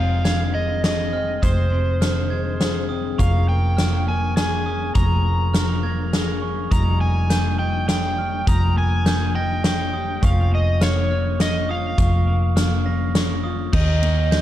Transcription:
Already playing: F1 F2 C3 G#3 C4 D#4 F4 C5 F5 F6
0.24 D#3 G#6, snare, closed hi-hat
0.53 G#3 D#5 G#6
0.83 G#4 D#5, snare, closed hi-hat
1.13 C4 F6
1.42 F1 F2 C5 D#6, kick, closed hi-hat
1.72 C3
2.01 D#3 F6, snare, closed hi-hat
2.30 G#3 G#6
2.61 G#4, snare, closed hi-hat
2.89 C4 D#6
3.18 F1 F3 A#3 C#4 A#4 F5 C#6, kick, closed hi-hat
3.48 A#3 G5
3.77 F3 F6, snare, closed hi-hat
4.07 A#3 G#5 F6
4.37 G#4 G#5, snare, closed hi-hat
4.66 C#4 D#6
4.95 F1 F3 A#5 C#6, kick, closed hi-hat
5.24 A#3
5.54 F3 F6, snare, closed hi-hat
5.83 A#3 G#6
6.13 G#4, snare, closed hi-hat
6.42 C#4 C#6
6.71 F1 F3 G3 D#4 A#5 D#6, kick, closed hi-hat
7.00 A#3 G#5
7.30 A#3 G6, snare, closed hi-hat
7.59 D#4 G5 G6
7.89 C#5 G5, snare, closed hi-hat
8.18 F6
8.47 F1 F3 A#5 D#6, kick, closed hi-hat
8.76 A#3 G#5
9.05 A#3 G6, snare, closed hi-hat
9.35 D#4 G5 A#6
9.64 C#5 G5, snare, closed hi-hat
9.93 G4 D#6
10.22 F1 F3 C#4 F4 F5 C#6, kick, closed hi-hat
10.52 A#3 D#5
10.81 A#3 C#5 F6, snare, closed hi-hat
11.11 C#4 F6
11.40 C#5 D#5, snare, closed hi-hat
11.69 F4 F5 D#6
11.98 F1 F3 C#6, kick, closed hi-hat
12.27 A#3
12.56 A#3 F6, snare, closed hi-hat
12.85 C#4 A#6
13.15 C#5, snare, closed hi-hat
13.44 F4 D#6
13.72 D#2 D#3 D#4 G4 A#4 D#5 G6, kick, crash
14.02 A#3, ride
14.31 G3 G6, snare, ride

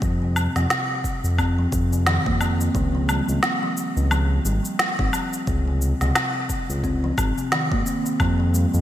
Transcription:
0.02 F2, kick, shaker
0.22 C3
0.36 low woodblock, shaker
0.56 F2 C3, snare, shaker
0.70 snare, shaker
1.04 kick, shaker
1.24 F2, shaker
1.38 C4, kick, low woodblock, shaker
1.58 F3
1.72 F2, kick, shaker
1.92 C3, shaker
2.06 D#3, snare, shaker
2.26 F2 A#3, kick
2.41 C4, low woodblock, shaker
2.61 shaker
2.75 C#2 F3, kick, shaker
2.95 F3
3.09 G3, low woodblock, shaker
3.28 C#2, shaker
3.43 snare, shaker
3.63 F3
3.77 shaker
3.97 C#2, shaker
4.11 F3, low woodblock, shaker
4.45 G#1 G3, shaker
4.65 shaker
4.79 snare, shaker
4.99 G#1 C4, kick
5.13 F3, low woodblock, shaker
5.33 shaker
5.47 C#2, kick, shaker
5.68 C3
5.82 shaker
6.01 C#2 C3, snare, shaker
6.15 snare, low woodblock, shaker
6.50 kick, shaker
6.69 C#2, shaker
6.84 C4, kick, shaker
7.04 F3
7.18 G#1, kick, low woodblock, shaker
7.38 C3, shaker
7.52 D#3, snare, shaker
7.72 G#1 A#3, kick
7.86 C4, shaker
8.06 shaker
8.20 F2 F3, kick, low woodblock, shaker
8.40 F3
8.54 G3, shaker
8.74 F2, shaker

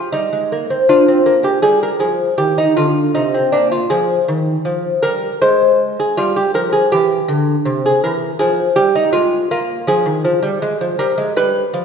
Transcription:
Already playing: F4
0.12 G3 D#4
0.33 G#3
0.52 A#3
0.70 C4
0.89 D4 F4
1.08 C4
1.26 A#3
1.43 G#3 G4
1.62 G3 G#4
1.83 A#4
2.00 F3 G#4
2.38 D#3 G4
2.58 D#4
2.77 D3 F4
3.15 C3 D#4
3.34 C4
3.52 A#2 D4
3.72 F4
3.90 F3 G#4
4.28 D#3
4.65 F3
5.02 G3 A#4
5.42 G#3 C5
6.00 G#4
6.17 G3 F4
6.36 G4
6.54 F3 A#4
6.72 G#4
6.92 E3 G4
7.28 D3
7.65 C3
7.86 G#4
8.04 E3 A#4
8.39 F3 G#4
8.76 G3 G4
8.95 D#4
9.13 G#3 F4
9.51 A#3 F4
9.87 F3 G#4
10.06 D#3
10.25 F3
10.43 G3
10.62 G#3
10.81 F3
10.99 G3 A#4
11.18 G#3
11.36 G3 B4
11.74 F3

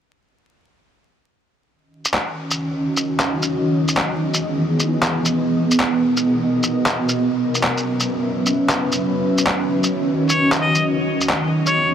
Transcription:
1.68 D#3 C#4 F#4 D#5
2.05 shaker
2.14 clap
2.51 shaker
2.97 shaker
3.20 clap, shaker
3.42 shaker
3.52 E3 B3 G#4
3.88 shaker
3.97 clap
4.34 shaker
4.80 shaker
5.03 clap, shaker
5.25 shaker
5.34 B2 A#4 D#5
5.71 shaker
5.80 clap
6.17 shaker
6.63 shaker
6.86 clap, shaker
7.09 shaker
7.18 F#3 C#4 B4 E5
7.55 shaker
7.64 clap
7.77 shaker
8.00 shaker
8.46 shaker
8.69 clap, shaker
8.92 shaker
9.00 D#3 F#4 D#5
9.38 shaker
9.47 clap
9.84 shaker
10.29 C#5, shaker
10.52 clap, shaker
10.61 D#5
10.75 shaker
10.85 E3 B3 G#4
11.21 shaker
11.30 clap
11.66 C#5, shaker

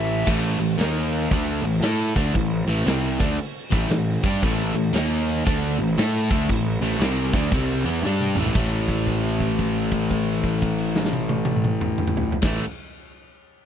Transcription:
Already playing: A1 A2 E3 A3 E5
0.25 A1 A2 E3 A3, kick, crash
0.58 A1 A2 E3, crash
0.78 D#2 D#3 A#3 D#4, snare, crash
1.12 crash
1.31 D2 D3 A3 D4, kick, crash
1.62 A1 A2 E3, crash
1.81 A2 A3 E4 A4, snare, crash
2.15 D2 D3 A3 D4, kick, crash
2.34 A1 A2 E3, kick, crash
2.66 A1 A2 E3 A3, crash
2.85 C2 C3 G3 C4, snare, crash
3.19 D2 D3 A3 D4, kick, crash
3.39 crash
3.71 A1 A2 E3 A3, kick, crash
3.83 snare
3.89 A1 A2 E3, snare, crash
4.23 G2 G3 D4 G4, kick, crash
4.41 A1 A2 E3 A3, kick, crash
4.74 A1 A2 E3, crash
4.93 D#2 D#3 A#3 D#4, snare, crash
5.29 crash
5.45 D2 D3 A3 D4, kick, crash
5.79 A1 A2 E3, crash
5.97 A2 A3 E4 A4, snare, crash
6.29 D2 D3 A3 D4, kick, crash
6.49 A1 A2 E3, kick, crash
6.81 A1 A2 E3 A3, crash
6.99 C2 C3 G3 C4, snare, crash
7.33 D2 D3 A3 D4, kick, crash
7.51 C2 C3 G3 C4, kick, crash
7.84 E2 E3 B3 E4, crash
8.02 G2 G3 D4 G4, snare
8.20 high tom
8.35 A1 A2 E3 A3, mid tom
8.45 floor tom
8.54 A1 A2 E3 A3, kick, crash
8.88 kick, crash
8.98 crash
9.07 kick, crash
9.23 crash
9.40 kick, crash
9.51 crash
9.59 kick, crash
9.76 crash
9.92 kick, crash
10.02 crash
10.11 kick, crash
10.28 crash
10.44 kick, crash
10.54 crash
10.62 kick, crash
10.78 crash
10.96 snare
11.05 snare
11.13 high tom
11.29 high tom
11.45 high tom
11.56 mid tom
11.64 mid tom
11.81 mid tom
11.98 mid tom
12.07 mid tom
12.17 floor tom
12.32 floor tom
12.42 A1 A2 E3, kick, snare, crash
12.46 A3

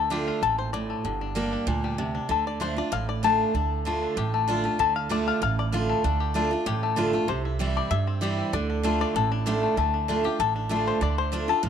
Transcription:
Already playing: D2 A4
0.10 D3 A3 D4 F4 G4
0.28 F4
0.42 A1 A#2 A4
0.58 C5
0.73 A2 D5
0.90 A3
1.04 G1 G2 D3
1.21 D4
1.35 G3 A#3 D4 G4
1.53 D4
1.67 D2 A#2 D4
1.84 G3
1.98 C3 D4
2.15 D4
2.29 D2 D3 A4
2.47 D5
2.60 D3 A3 D4 F4 C5
2.76 D4 F4 D5
2.92 A1 A2 F5
3.09 D5
3.23 D3 A3 D4 F4 A4
3.40 D4
3.54 D2 D3 D4
3.85 D3 A3 D4 F4
4.02 D4
4.17 A1 A2 G4
4.34 A3
4.48 D3 A3 D4 F4
4.64 A3 D4 F4
4.79 D2 D3 A4
4.96 F5
5.09 D3 A3 D4 F4 D5
5.28 F5
5.41 A1 A2 F5
5.59 D5
5.72 D3 A3 D4 F4
5.89 A3
6.04 D2 D3 D4
6.20 G4
6.34 D3 A3 D4 F4
6.51 D4 F4
6.66 A1 A2 G4
6.83 A3
6.96 D3 A3 D4 F4
7.13 A3 D4 F4
7.28 C2 C3 C5
7.45 E4
7.59 E3 G3 C4 E4
7.77 D5
7.91 G2 E5
8.07 C4
8.21 E3 G3 C4 E4 G4
8.38 G3
8.53 D2 D3 D5
8.70 D4
8.83 D3 A3 D4 F4
9.01 D5
9.15 A1 A2 A4
9.32 D4
9.46 D3 A3 D4 F4 G4
9.63 A3
9.77 D2 D3 A3
9.94 D4
10.08 D3 A3 D4 F4
10.24 D4 F4 G4
10.39 A1 A2 A4
10.56 D4
10.69 D3 A3 D4 F4
10.87 C5
11.01 D2 D3 D5
11.18 C5
11.32 D3 A3 D4 F4
11.48 D4 F4 A4
11.63 A1 A2 F4

